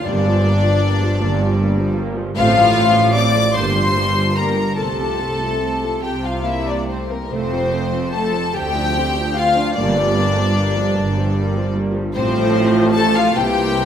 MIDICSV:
0, 0, Header, 1, 6, 480
1, 0, Start_track
1, 0, Key_signature, -1, "major"
1, 0, Tempo, 772201
1, 27, Time_signature, 6, 3, 24, 8
1, 1466, Tempo, 800000
1, 2426, Tempo, 834492
1, 5306, Tempo, 796813
1, 7706, Tempo, 857143
1, 8210, End_track
2, 0, Start_track
2, 0, Title_t, "Violin section"
2, 0, Program_c, 0, 48
2, 32, Note_on_c, 0, 74, 107
2, 1229, Note_off_c, 0, 74, 0
2, 1471, Note_on_c, 0, 77, 127
2, 1920, Note_off_c, 0, 77, 0
2, 1946, Note_on_c, 0, 86, 127
2, 2176, Note_on_c, 0, 84, 118
2, 2186, Note_off_c, 0, 86, 0
2, 2659, Note_off_c, 0, 84, 0
2, 2671, Note_on_c, 0, 82, 100
2, 2898, Note_on_c, 0, 81, 92
2, 2903, Note_off_c, 0, 82, 0
2, 3604, Note_off_c, 0, 81, 0
2, 3619, Note_on_c, 0, 79, 87
2, 3737, Note_off_c, 0, 79, 0
2, 3744, Note_on_c, 0, 77, 80
2, 3863, Note_off_c, 0, 77, 0
2, 3868, Note_on_c, 0, 76, 91
2, 3987, Note_off_c, 0, 76, 0
2, 3993, Note_on_c, 0, 74, 82
2, 4110, Note_on_c, 0, 72, 73
2, 4112, Note_off_c, 0, 74, 0
2, 4229, Note_off_c, 0, 72, 0
2, 4240, Note_on_c, 0, 70, 80
2, 4357, Note_off_c, 0, 70, 0
2, 4358, Note_on_c, 0, 72, 106
2, 4832, Note_on_c, 0, 81, 107
2, 4833, Note_off_c, 0, 72, 0
2, 5070, Note_off_c, 0, 81, 0
2, 5073, Note_on_c, 0, 79, 125
2, 5554, Note_on_c, 0, 77, 115
2, 5555, Note_off_c, 0, 79, 0
2, 5784, Note_on_c, 0, 74, 118
2, 5793, Note_off_c, 0, 77, 0
2, 6962, Note_off_c, 0, 74, 0
2, 7219, Note_on_c, 0, 72, 122
2, 7683, Note_off_c, 0, 72, 0
2, 7705, Note_on_c, 0, 81, 125
2, 7821, Note_on_c, 0, 77, 114
2, 7825, Note_off_c, 0, 81, 0
2, 7941, Note_on_c, 0, 79, 119
2, 7943, Note_off_c, 0, 77, 0
2, 8210, Note_off_c, 0, 79, 0
2, 8210, End_track
3, 0, Start_track
3, 0, Title_t, "Violin section"
3, 0, Program_c, 1, 48
3, 30, Note_on_c, 1, 62, 109
3, 1228, Note_off_c, 1, 62, 0
3, 1474, Note_on_c, 1, 65, 127
3, 1922, Note_off_c, 1, 65, 0
3, 1944, Note_on_c, 1, 74, 121
3, 2180, Note_off_c, 1, 74, 0
3, 2182, Note_on_c, 1, 72, 99
3, 2659, Note_on_c, 1, 70, 92
3, 2662, Note_off_c, 1, 72, 0
3, 2897, Note_off_c, 1, 70, 0
3, 2901, Note_on_c, 1, 69, 93
3, 3616, Note_on_c, 1, 67, 79
3, 3620, Note_off_c, 1, 69, 0
3, 3738, Note_off_c, 1, 67, 0
3, 3745, Note_on_c, 1, 65, 72
3, 3855, Note_on_c, 1, 64, 78
3, 3863, Note_off_c, 1, 65, 0
3, 3977, Note_on_c, 1, 62, 72
3, 3980, Note_off_c, 1, 64, 0
3, 4103, Note_on_c, 1, 60, 64
3, 4104, Note_off_c, 1, 62, 0
3, 4226, Note_off_c, 1, 60, 0
3, 4229, Note_on_c, 1, 58, 64
3, 4342, Note_on_c, 1, 60, 94
3, 4351, Note_off_c, 1, 58, 0
3, 4815, Note_off_c, 1, 60, 0
3, 4828, Note_on_c, 1, 69, 101
3, 5063, Note_off_c, 1, 69, 0
3, 5071, Note_on_c, 1, 67, 100
3, 5554, Note_off_c, 1, 67, 0
3, 5556, Note_on_c, 1, 65, 107
3, 5794, Note_off_c, 1, 65, 0
3, 5797, Note_on_c, 1, 62, 98
3, 6992, Note_off_c, 1, 62, 0
3, 7228, Note_on_c, 1, 60, 114
3, 7687, Note_off_c, 1, 60, 0
3, 7705, Note_on_c, 1, 69, 111
3, 7822, Note_off_c, 1, 69, 0
3, 7830, Note_on_c, 1, 65, 105
3, 7939, Note_on_c, 1, 67, 109
3, 7947, Note_off_c, 1, 65, 0
3, 8210, Note_off_c, 1, 67, 0
3, 8210, End_track
4, 0, Start_track
4, 0, Title_t, "Viola section"
4, 0, Program_c, 2, 48
4, 25, Note_on_c, 2, 55, 83
4, 25, Note_on_c, 2, 58, 94
4, 140, Note_off_c, 2, 55, 0
4, 140, Note_off_c, 2, 58, 0
4, 154, Note_on_c, 2, 53, 86
4, 157, Note_on_c, 2, 55, 78
4, 270, Note_off_c, 2, 55, 0
4, 274, Note_off_c, 2, 53, 0
4, 278, Note_on_c, 2, 55, 81
4, 279, Note_on_c, 2, 58, 86
4, 387, Note_off_c, 2, 55, 0
4, 393, Note_on_c, 2, 53, 72
4, 394, Note_on_c, 2, 55, 73
4, 397, Note_off_c, 2, 58, 0
4, 510, Note_off_c, 2, 55, 0
4, 513, Note_off_c, 2, 53, 0
4, 518, Note_on_c, 2, 55, 79
4, 519, Note_on_c, 2, 58, 83
4, 626, Note_off_c, 2, 55, 0
4, 627, Note_off_c, 2, 58, 0
4, 638, Note_on_c, 2, 55, 78
4, 640, Note_on_c, 2, 53, 76
4, 746, Note_off_c, 2, 55, 0
4, 753, Note_on_c, 2, 55, 85
4, 753, Note_on_c, 2, 58, 84
4, 755, Note_off_c, 2, 53, 0
4, 871, Note_off_c, 2, 55, 0
4, 871, Note_off_c, 2, 58, 0
4, 877, Note_on_c, 2, 53, 87
4, 877, Note_on_c, 2, 55, 80
4, 983, Note_off_c, 2, 55, 0
4, 989, Note_on_c, 2, 58, 82
4, 990, Note_on_c, 2, 55, 85
4, 992, Note_off_c, 2, 53, 0
4, 1100, Note_off_c, 2, 55, 0
4, 1100, Note_off_c, 2, 58, 0
4, 1113, Note_on_c, 2, 55, 85
4, 1114, Note_on_c, 2, 53, 84
4, 1226, Note_off_c, 2, 55, 0
4, 1230, Note_off_c, 2, 53, 0
4, 1234, Note_on_c, 2, 55, 95
4, 1236, Note_on_c, 2, 58, 96
4, 1344, Note_off_c, 2, 55, 0
4, 1349, Note_on_c, 2, 53, 85
4, 1351, Note_off_c, 2, 58, 0
4, 1351, Note_on_c, 2, 55, 84
4, 1468, Note_off_c, 2, 53, 0
4, 1469, Note_off_c, 2, 55, 0
4, 1469, Note_on_c, 2, 57, 104
4, 1472, Note_on_c, 2, 60, 110
4, 1577, Note_off_c, 2, 57, 0
4, 1579, Note_off_c, 2, 60, 0
4, 1587, Note_on_c, 2, 53, 90
4, 1588, Note_on_c, 2, 57, 90
4, 1697, Note_off_c, 2, 57, 0
4, 1704, Note_on_c, 2, 57, 84
4, 1704, Note_on_c, 2, 60, 93
4, 1705, Note_off_c, 2, 53, 0
4, 1814, Note_off_c, 2, 57, 0
4, 1821, Note_on_c, 2, 57, 84
4, 1823, Note_off_c, 2, 60, 0
4, 1823, Note_on_c, 2, 53, 80
4, 1937, Note_off_c, 2, 57, 0
4, 1943, Note_off_c, 2, 53, 0
4, 1943, Note_on_c, 2, 60, 87
4, 1944, Note_on_c, 2, 57, 83
4, 2053, Note_off_c, 2, 57, 0
4, 2054, Note_off_c, 2, 60, 0
4, 2060, Note_on_c, 2, 53, 71
4, 2060, Note_on_c, 2, 57, 73
4, 2181, Note_on_c, 2, 58, 80
4, 2182, Note_off_c, 2, 53, 0
4, 2182, Note_off_c, 2, 57, 0
4, 2184, Note_on_c, 2, 55, 82
4, 2296, Note_off_c, 2, 58, 0
4, 2297, Note_off_c, 2, 55, 0
4, 2308, Note_on_c, 2, 53, 73
4, 2308, Note_on_c, 2, 55, 73
4, 2427, Note_off_c, 2, 55, 0
4, 2429, Note_off_c, 2, 53, 0
4, 2433, Note_on_c, 2, 55, 76
4, 2433, Note_on_c, 2, 58, 76
4, 2538, Note_off_c, 2, 55, 0
4, 2545, Note_on_c, 2, 55, 68
4, 2546, Note_on_c, 2, 53, 67
4, 2548, Note_off_c, 2, 58, 0
4, 2659, Note_off_c, 2, 55, 0
4, 2663, Note_off_c, 2, 53, 0
4, 2663, Note_on_c, 2, 58, 66
4, 2666, Note_on_c, 2, 55, 72
4, 2773, Note_off_c, 2, 58, 0
4, 2774, Note_off_c, 2, 55, 0
4, 2780, Note_on_c, 2, 53, 64
4, 2781, Note_on_c, 2, 55, 64
4, 2899, Note_off_c, 2, 53, 0
4, 2900, Note_off_c, 2, 55, 0
4, 2902, Note_on_c, 2, 57, 71
4, 2903, Note_on_c, 2, 60, 73
4, 3012, Note_off_c, 2, 57, 0
4, 3012, Note_off_c, 2, 60, 0
4, 3020, Note_on_c, 2, 57, 63
4, 3022, Note_on_c, 2, 53, 60
4, 3137, Note_off_c, 2, 57, 0
4, 3140, Note_off_c, 2, 53, 0
4, 3143, Note_on_c, 2, 57, 61
4, 3143, Note_on_c, 2, 60, 64
4, 3256, Note_off_c, 2, 57, 0
4, 3261, Note_off_c, 2, 60, 0
4, 3262, Note_on_c, 2, 53, 55
4, 3263, Note_on_c, 2, 57, 56
4, 3374, Note_off_c, 2, 57, 0
4, 3380, Note_off_c, 2, 53, 0
4, 3381, Note_on_c, 2, 57, 60
4, 3382, Note_on_c, 2, 60, 63
4, 3492, Note_off_c, 2, 57, 0
4, 3492, Note_off_c, 2, 60, 0
4, 3501, Note_on_c, 2, 57, 54
4, 3502, Note_on_c, 2, 53, 53
4, 3620, Note_off_c, 2, 53, 0
4, 3620, Note_off_c, 2, 57, 0
4, 3626, Note_on_c, 2, 60, 78
4, 3847, Note_off_c, 2, 60, 0
4, 3868, Note_on_c, 2, 58, 71
4, 4110, Note_off_c, 2, 58, 0
4, 4111, Note_on_c, 2, 57, 63
4, 4344, Note_off_c, 2, 57, 0
4, 4351, Note_on_c, 2, 57, 84
4, 4463, Note_off_c, 2, 57, 0
4, 4474, Note_on_c, 2, 60, 73
4, 4475, Note_on_c, 2, 53, 73
4, 4593, Note_off_c, 2, 53, 0
4, 4593, Note_off_c, 2, 60, 0
4, 4593, Note_on_c, 2, 57, 71
4, 4595, Note_off_c, 2, 57, 0
4, 4595, Note_on_c, 2, 57, 75
4, 4712, Note_off_c, 2, 57, 0
4, 4713, Note_on_c, 2, 53, 70
4, 4715, Note_on_c, 2, 60, 69
4, 4830, Note_on_c, 2, 57, 71
4, 4831, Note_off_c, 2, 53, 0
4, 4832, Note_off_c, 2, 57, 0
4, 4832, Note_off_c, 2, 60, 0
4, 4832, Note_on_c, 2, 57, 76
4, 4942, Note_off_c, 2, 57, 0
4, 4943, Note_on_c, 2, 53, 66
4, 4945, Note_on_c, 2, 60, 65
4, 5065, Note_off_c, 2, 60, 0
4, 5066, Note_off_c, 2, 53, 0
4, 5072, Note_on_c, 2, 60, 73
4, 5073, Note_on_c, 2, 50, 70
4, 5183, Note_off_c, 2, 50, 0
4, 5183, Note_off_c, 2, 60, 0
4, 5191, Note_on_c, 2, 53, 69
4, 5192, Note_on_c, 2, 62, 71
4, 5310, Note_off_c, 2, 53, 0
4, 5310, Note_off_c, 2, 62, 0
4, 5313, Note_on_c, 2, 50, 71
4, 5313, Note_on_c, 2, 60, 77
4, 5433, Note_on_c, 2, 53, 73
4, 5434, Note_off_c, 2, 50, 0
4, 5434, Note_off_c, 2, 60, 0
4, 5434, Note_on_c, 2, 62, 71
4, 5554, Note_off_c, 2, 53, 0
4, 5554, Note_off_c, 2, 62, 0
4, 5557, Note_on_c, 2, 50, 75
4, 5558, Note_on_c, 2, 60, 81
4, 5667, Note_off_c, 2, 50, 0
4, 5667, Note_off_c, 2, 60, 0
4, 5671, Note_on_c, 2, 53, 76
4, 5675, Note_on_c, 2, 62, 71
4, 5791, Note_off_c, 2, 53, 0
4, 5792, Note_on_c, 2, 58, 93
4, 5793, Note_off_c, 2, 62, 0
4, 5794, Note_on_c, 2, 55, 97
4, 5903, Note_off_c, 2, 58, 0
4, 5905, Note_off_c, 2, 55, 0
4, 5914, Note_on_c, 2, 53, 83
4, 5915, Note_on_c, 2, 55, 84
4, 6031, Note_off_c, 2, 55, 0
4, 6034, Note_off_c, 2, 53, 0
4, 6036, Note_on_c, 2, 58, 87
4, 6038, Note_on_c, 2, 55, 81
4, 6155, Note_off_c, 2, 58, 0
4, 6156, Note_off_c, 2, 55, 0
4, 6162, Note_on_c, 2, 53, 73
4, 6164, Note_on_c, 2, 55, 73
4, 6267, Note_off_c, 2, 55, 0
4, 6274, Note_on_c, 2, 55, 83
4, 6276, Note_on_c, 2, 58, 81
4, 6278, Note_off_c, 2, 53, 0
4, 6386, Note_off_c, 2, 55, 0
4, 6387, Note_off_c, 2, 58, 0
4, 6398, Note_on_c, 2, 53, 76
4, 6398, Note_on_c, 2, 55, 73
4, 6508, Note_off_c, 2, 55, 0
4, 6516, Note_off_c, 2, 53, 0
4, 6516, Note_on_c, 2, 55, 80
4, 6516, Note_on_c, 2, 58, 84
4, 6630, Note_off_c, 2, 55, 0
4, 6634, Note_off_c, 2, 58, 0
4, 6637, Note_on_c, 2, 53, 77
4, 6637, Note_on_c, 2, 55, 77
4, 6748, Note_off_c, 2, 55, 0
4, 6754, Note_off_c, 2, 53, 0
4, 6754, Note_on_c, 2, 58, 83
4, 6755, Note_on_c, 2, 55, 84
4, 6864, Note_off_c, 2, 55, 0
4, 6864, Note_off_c, 2, 58, 0
4, 6876, Note_on_c, 2, 53, 79
4, 6878, Note_on_c, 2, 55, 79
4, 6982, Note_off_c, 2, 55, 0
4, 6988, Note_on_c, 2, 58, 83
4, 6990, Note_on_c, 2, 55, 90
4, 6992, Note_off_c, 2, 53, 0
4, 7105, Note_off_c, 2, 55, 0
4, 7107, Note_off_c, 2, 58, 0
4, 7111, Note_on_c, 2, 53, 78
4, 7112, Note_on_c, 2, 55, 78
4, 7221, Note_off_c, 2, 53, 0
4, 7228, Note_off_c, 2, 55, 0
4, 7229, Note_on_c, 2, 53, 118
4, 7233, Note_on_c, 2, 57, 113
4, 7924, Note_off_c, 2, 53, 0
4, 7926, Note_off_c, 2, 57, 0
4, 7945, Note_on_c, 2, 52, 86
4, 7946, Note_on_c, 2, 58, 97
4, 8210, Note_off_c, 2, 52, 0
4, 8210, Note_off_c, 2, 58, 0
4, 8210, End_track
5, 0, Start_track
5, 0, Title_t, "Cello section"
5, 0, Program_c, 3, 48
5, 23, Note_on_c, 3, 43, 102
5, 665, Note_off_c, 3, 43, 0
5, 750, Note_on_c, 3, 43, 110
5, 1381, Note_off_c, 3, 43, 0
5, 1469, Note_on_c, 3, 45, 116
5, 2099, Note_off_c, 3, 45, 0
5, 2179, Note_on_c, 3, 43, 110
5, 2813, Note_off_c, 3, 43, 0
5, 2901, Note_on_c, 3, 48, 91
5, 3535, Note_off_c, 3, 48, 0
5, 3617, Note_on_c, 3, 48, 80
5, 4264, Note_off_c, 3, 48, 0
5, 4352, Note_on_c, 3, 41, 94
5, 4984, Note_off_c, 3, 41, 0
5, 5070, Note_on_c, 3, 38, 85
5, 5708, Note_off_c, 3, 38, 0
5, 5792, Note_on_c, 3, 43, 108
5, 6429, Note_off_c, 3, 43, 0
5, 6513, Note_on_c, 3, 43, 99
5, 7142, Note_off_c, 3, 43, 0
5, 7229, Note_on_c, 3, 45, 108
5, 7924, Note_off_c, 3, 45, 0
5, 7944, Note_on_c, 3, 48, 96
5, 8210, Note_off_c, 3, 48, 0
5, 8210, End_track
6, 0, Start_track
6, 0, Title_t, "Double bass section"
6, 0, Program_c, 4, 48
6, 31, Note_on_c, 4, 31, 120
6, 669, Note_off_c, 4, 31, 0
6, 754, Note_on_c, 4, 31, 119
6, 1383, Note_off_c, 4, 31, 0
6, 1470, Note_on_c, 4, 33, 127
6, 2099, Note_off_c, 4, 33, 0
6, 2187, Note_on_c, 4, 31, 106
6, 2817, Note_off_c, 4, 31, 0
6, 2903, Note_on_c, 4, 36, 87
6, 3536, Note_off_c, 4, 36, 0
6, 3622, Note_on_c, 4, 36, 77
6, 4267, Note_off_c, 4, 36, 0
6, 4354, Note_on_c, 4, 29, 100
6, 4985, Note_off_c, 4, 29, 0
6, 5067, Note_on_c, 4, 38, 96
6, 5706, Note_off_c, 4, 38, 0
6, 5793, Note_on_c, 4, 31, 121
6, 6429, Note_off_c, 4, 31, 0
6, 6512, Note_on_c, 4, 31, 100
6, 7142, Note_off_c, 4, 31, 0
6, 7228, Note_on_c, 4, 33, 117
6, 7924, Note_off_c, 4, 33, 0
6, 7945, Note_on_c, 4, 36, 94
6, 8210, Note_off_c, 4, 36, 0
6, 8210, End_track
0, 0, End_of_file